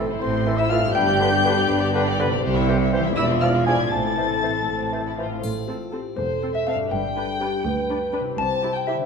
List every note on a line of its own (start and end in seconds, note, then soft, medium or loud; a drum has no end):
0.00 0.13 A1 medium
0.00 0.13 A2 medium
0.00 0.88 A2 medium
0.00 0.92 A3 medium
0.00 0.91 C4 soft
0.00 0.93 E4 soft
0.00 0.96 E4 medium
0.00 0.95 A4 soft
0.08 0.21 E4 soft
0.08 0.21 C5 soft
0.21 0.87 A1 medium
0.21 0.87 A2 medium
0.21 0.34 C4 medium
0.21 0.56 C4 medium
0.21 0.34 A4 medium
0.21 0.56 C5 medium
0.21 0.59 C5 medium
0.21 0.56 C5 medium
0.21 0.56 C6 medium
0.33 0.46 E4 soft
0.33 0.46 C5 soft
0.46 0.56 E3 medium
0.46 0.58 C4 medium
0.46 0.58 A4 medium
0.46 0.55 A4 medium
0.57 0.70 E4 medium
0.57 0.64 E4 medium
0.57 0.70 C5 medium
0.57 0.71 E5 medium
0.57 0.70 E5 medium
0.57 0.65 E5 medium
0.57 0.71 E6 medium
0.70 0.80 E3 medium
0.70 0.83 C4 medium
0.70 0.79 F4 medium
0.70 0.83 A4 medium
0.70 0.80 A4 medium
0.70 0.93 F5 medium
0.70 0.94 F5 medium
0.70 0.95 F5 medium
0.70 0.95 F6 medium
0.77 2.36 G2 medium
0.82 2.38 D4 soft
0.82 0.95 E4 medium
0.82 0.95 C5 medium
0.86 2.33 G4 soft
0.91 2.42 B4 medium
0.95 1.60 G1 medium
0.95 1.60 G2 medium
0.95 2.40 B3 medium
0.95 2.40 D4 medium
0.95 1.07 D4 medium
0.95 2.16 G4 medium
0.95 1.07 B4 medium
0.95 2.15 G5 medium
0.95 2.14 G5 medium
0.95 2.18 G5 medium
0.95 2.15 G6 loud
1.07 1.20 G4 medium
1.07 1.20 D5 medium
1.19 1.30 D3 medium
1.19 1.32 D4 medium
1.19 1.32 B4 medium
1.19 1.30 B4 medium
1.32 1.45 G4 medium
1.32 1.45 D5 medium
1.44 1.54 D3 medium
1.44 1.56 D4 medium
1.44 1.56 B4 medium
1.44 1.54 B4 medium
1.56 1.69 G4 medium
1.56 1.69 D5 medium
1.69 2.34 G1 medium
1.69 2.34 G2 medium
1.69 1.81 D4 medium
1.69 1.81 B4 medium
1.80 1.93 G4 medium
1.80 1.93 D5 medium
1.93 2.03 D3 medium
1.93 2.05 D4 medium
1.93 2.05 B4 medium
1.93 2.03 B4 medium
2.06 2.18 G4 medium
2.06 2.18 D5 medium
2.19 2.28 D3 medium
2.19 2.31 D4 medium
2.19 2.31 B4 medium
2.19 2.28 B4 medium
2.25 3.10 C3 medium
2.30 3.77 E4 medium
2.30 2.43 G4 medium
2.30 2.43 D5 medium
2.34 3.15 G4 medium
2.39 3.17 C5 medium
2.43 3.08 C2 loud
2.43 3.08 C2 medium
2.43 3.15 C4 medium
2.43 3.16 E4 medium
2.43 2.55 G4 medium
2.43 2.55 C5 medium
2.56 2.68 E4 medium
2.56 2.68 E5 medium
2.68 2.77 E3 medium
2.68 2.80 G4 medium
2.68 2.77 C5 medium
2.68 2.80 C5 medium
2.80 2.92 E4 medium
2.80 2.93 E5 medium
2.93 3.02 E3 medium
2.93 3.04 G4 medium
2.93 3.04 C5 medium
2.93 3.02 C5 medium
2.99 3.85 E3 medium
3.04 3.16 E4 medium
3.04 3.87 F4 medium
3.04 3.17 E5 medium
3.08 3.90 G#4 medium
3.13 3.91 D4 medium
3.13 3.90 F4 medium
3.13 3.92 D5 medium
3.13 3.28 E5 medium
3.13 3.40 E5 medium
3.13 3.25 E6 medium
3.17 3.83 E1 medium
3.17 3.83 E2 medium
3.17 3.25 E4 medium
3.17 3.29 E4 medium
3.17 3.29 D5 medium
3.17 3.23 E5 medium
3.31 3.43 F4 medium
3.31 3.42 E5 medium
3.41 3.51 F3 medium
3.41 3.55 E4 medium
3.41 3.50 F4 medium
3.41 3.51 D5 medium
3.41 3.55 D5 medium
3.41 3.66 F5 medium
3.41 3.65 F5 medium
3.41 3.49 F6 medium
3.55 3.67 F4 medium
3.55 3.67 E5 medium
3.66 3.77 F3 medium
3.66 3.79 E4 soft
3.66 3.75 G#4 medium
3.66 3.76 D5 soft
3.66 3.79 D5 soft
3.66 3.78 G#5 medium
3.66 3.90 G#5 medium
3.66 3.73 G#5 medium
3.66 3.91 G#6 medium
3.74 5.24 A2 soft
3.79 5.33 E4 soft
3.79 3.93 F4 soft
3.79 3.93 E5 soft
3.83 6.89 A4 soft
3.88 5.18 E4 medium
3.88 5.37 C5 soft
3.88 5.15 A5 medium
3.88 5.17 A6 medium
3.92 4.59 A1 medium
3.92 4.59 A2 medium
3.92 5.15 C4 soft
3.92 4.04 C4 soft
3.92 5.15 A4 medium
3.92 4.04 C5 soft
3.92 5.14 A5 medium
3.92 5.15 A5 medium
4.05 4.17 E4 soft
4.05 4.17 A4 soft
4.18 4.26 E3 soft
4.18 4.30 C4 soft
4.18 4.26 C5 soft
4.18 4.30 C5 soft
4.30 4.43 E4 soft
4.30 4.42 A4 soft
4.42 4.52 E3 soft
4.42 4.54 C4 soft
4.42 4.51 C5 soft
4.42 4.54 C5 soft
4.56 4.68 E4 soft
4.56 4.68 A4 soft
4.67 5.34 A1 medium
4.67 5.34 A2 soft
4.67 5.03 C4 medium
4.93 5.02 E3 soft
4.93 5.02 C5 soft
5.06 5.11 E4 soft
5.18 5.27 E3 soft
5.18 5.43 F4 soft
5.18 5.27 C5 soft
5.25 6.84 A2 soft
5.30 6.86 C4 soft
5.34 6.89 E4 soft
5.39 6.01 A1 medium
5.39 6.91 C5 soft
5.43 6.02 A2 medium
5.43 5.66 A4 soft
5.43 triangle soft
5.67 5.76 C4 soft
5.67 5.92 F4 medium
5.67 5.76 A4 soft
5.67 5.75 C5 soft
5.92 6.00 C4 soft
5.92 6.17 G4 soft
5.92 6.00 A4 soft
5.92 6.00 C5 soft
6.17 6.76 E1 medium
6.17 6.76 E2 medium
6.17 6.90 A4 medium
6.17 6.51 C5 medium
6.41 6.50 C4 soft
6.41 6.50 A4 soft
6.41 6.49 C5 soft
6.54 6.66 E5 medium
6.66 6.75 C4 soft
6.66 6.75 A4 soft
6.66 6.74 C5 soft
6.66 6.90 F5 medium
6.66 6.75 F5 medium
6.73 8.31 G2 soft
6.78 8.33 D4 soft
6.82 8.28 G4 soft
6.87 8.38 B4 soft
6.91 7.50 G1 medium
6.91 7.50 G2 medium
6.91 7.02 B4 medium
6.91 8.10 G5 medium
6.91 8.11 G5 medium
7.15 7.24 D4 soft
7.15 7.40 A4 medium
7.15 7.23 B4 soft
7.15 7.24 B4 soft
7.40 7.48 D4 medium
7.40 7.64 G4 medium
7.40 7.48 B4 medium
7.65 8.23 D2 medium
7.65 8.38 B4 medium
7.89 7.97 D4 medium
7.89 7.97 B4 medium
7.89 7.97 B4 soft
8.13 8.21 D4 medium
8.13 8.21 B4 medium
8.13 8.21 B4 soft
8.20 9.05 C3 medium
8.25 9.06 E4 soft
8.29 9.06 G4 soft
8.33 9.06 C5 soft
8.38 8.96 C2 medium
8.38 8.97 C2 medium
8.38 9.06 C5 medium
8.38 8.72 A5 medium
8.38 8.73 A5 medium
8.63 8.70 E4 soft
8.63 8.70 G4 soft
8.63 8.71 C5 medium
8.75 8.87 G5 medium
8.87 8.95 E4 medium
8.87 8.95 G4 soft
8.87 8.95 C5 soft
8.87 9.06 E5 medium
8.87 8.95 E5 medium
8.94 9.06 D3 soft
8.98 9.06 D4 soft